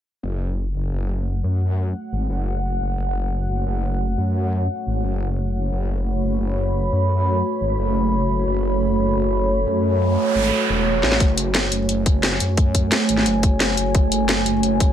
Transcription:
0.23 F#1 A3 F#4 C#5 F#5
0.75 F#1
0.92 F#1
1.43 F#2
2.12 G#1
2.29 F#1
2.80 F#1
2.98 F#1
3.49 F#1
3.66 F#1
4.17 F#2
4.86 G#1
5.03 F#1
5.72 F#1 B5
6.23 F#1
6.40 F#1
6.92 F#2
7.60 G#1
7.78 F#1
8.29 F#1
8.46 F#1
8.97 F#1
9.15 F#1
9.66 F#2
9.83 noise sweep
10.35 G#1
10.69 E1
11.03 A1, snare
11.12 snare
11.20 F#1 G#5, kick, closed hi-hat
11.38 closed hi-hat
11.55 snare, closed hi-hat
11.72 F#1, closed hi-hat
11.89 F#1, closed hi-hat
12.06 kick, closed hi-hat
12.23 snare, closed hi-hat
12.32 snare
12.40 F#2, closed hi-hat
12.57 kick, closed hi-hat
12.75 kick, closed hi-hat
12.92 snare, closed hi-hat
13.09 G#1, closed hi-hat
13.17 snare
13.26 F#1, closed hi-hat
13.43 kick, closed hi-hat
13.60 snare, closed hi-hat
13.77 F#1, closed hi-hat
13.95 F#1, kick, closed hi-hat
14.12 closed hi-hat
14.29 snare, closed hi-hat
14.46 F#1, closed hi-hat
14.63 F#1, closed hi-hat
14.80 kick, closed hi-hat

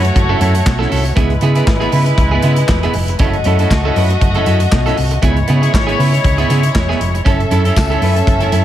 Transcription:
Already playing: A3 F#4 C#5
0.04 muted clean electric guitar stroke, closed hi-hat
0.15 F#1, muted clean electric guitar stroke, kick, closed hi-hat
0.29 C#4 E4 A4
0.40 F#2 C#4 E4 A4, closed hi-hat
0.55 muted clean electric guitar stroke, closed hi-hat
0.66 B1, muted clean electric guitar stroke, kick, snare, clap
0.79 C#4 E4 A4, snare
0.90 C2 C#4 E4 A4, open hi-hat
1.05 muted clean electric guitar stroke, closed hi-hat
1.16 C#2 G#3 B3 E4 G#4 B4, kick, closed hi-hat
1.30 closed hi-hat
1.41 C#3 B3 E4 G#4, closed hi-hat
1.55 B3 E4 G#4, closed hi-hat
1.67 G#1, muted clean electric guitar stroke, kick, snare, clap
1.80 B3 E4 G#4, closed hi-hat
1.92 C#3 B3 E4 B4, open hi-hat
2.06 muted clean electric guitar stroke, closed hi-hat
2.18 C#2, muted clean electric guitar stroke, kick, closed hi-hat
2.31 B3 E4 G#4
2.42 C#3 B3 E4 G#4, closed hi-hat
2.56 muted clean electric guitar stroke, closed hi-hat
2.68 E1, muted clean electric guitar stroke, kick, snare, clap
2.83 B3 E4 G#4, closed hi-hat
2.94 F1, muted clean electric guitar stroke, open hi-hat
3.08 muted clean electric guitar stroke, closed hi-hat
3.19 F#1 A3 C#4 E4 F#4 A4 D#5, kick, closed hi-hat
3.33 closed hi-hat
3.44 F#2 C#4 E4 A4, closed hi-hat
3.59 C#4 E4 A4, closed hi-hat
3.70 C#2, muted clean electric guitar stroke, kick, snare, clap
3.85 C#4 E4 A4
3.96 F#2 C#4 E4 B4, open hi-hat
4.10 muted clean electric guitar stroke, closed hi-hat
4.21 F#1, muted clean electric guitar stroke, kick, closed hi-hat
4.35 C#4 E4 A4, closed hi-hat
4.46 F#2 C#4 E4 A4, closed hi-hat
4.60 muted clean electric guitar stroke, closed hi-hat
4.72 B1, muted clean electric guitar stroke, kick, snare, clap
4.86 C#4 E4 A4, snare, closed hi-hat
4.97 C2, muted clean electric guitar stroke, open hi-hat
5.11 muted clean electric guitar stroke, closed hi-hat
5.22 C#2 G#3 B3 E4 G#4 C#5, kick, closed hi-hat
5.37 closed hi-hat
5.48 C#3 B3 E4 G#4, closed hi-hat
5.62 B3 E4 G#4, closed hi-hat
5.73 G#1, muted clean electric guitar stroke, kick, snare, clap
5.87 B3 E4 G#4, closed hi-hat
5.98 C#3 B3 E4 B4, open hi-hat
6.13 muted clean electric guitar stroke, closed hi-hat
6.24 C#2, muted clean electric guitar stroke, kick, closed hi-hat
6.38 B3 E4 G#4, closed hi-hat
6.49 C#3 B3 E4 G#4, closed hi-hat
6.63 muted clean electric guitar stroke, closed hi-hat
6.75 E1, muted clean electric guitar stroke, kick, snare, clap
6.89 B3 E4 G#4, snare
7.00 F1, muted clean electric guitar stroke, closed hi-hat
7.14 muted clean electric guitar stroke, closed hi-hat
7.25 F#1 C#4 E4 A4 E5, kick, closed hi-hat
7.40 closed hi-hat
7.51 F#2 C#4 E4 A4, closed hi-hat
7.65 C#4 E4 A4, closed hi-hat
7.76 C#2, kick, snare, clap, tambourine
7.90 C#4 E4 A4, closed hi-hat
8.01 F#2 C#4 E4 B4, open hi-hat
8.16 muted clean electric guitar stroke, closed hi-hat
8.27 F#1, muted clean electric guitar stroke, kick, closed hi-hat
8.40 C#4 E4 A4, closed hi-hat
8.52 F#2 C#4 E4 A4, closed hi-hat

